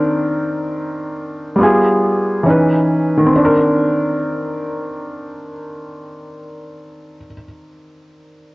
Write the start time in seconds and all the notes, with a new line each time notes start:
Already playing: D#3 C4 D4 A#4
1.56 G3 B3
1.61 F4 G#4
2.43 E3 C#4
2.47 D#4 B4
3.17 D#3
3.26 C4
3.36 D4
3.45 A#4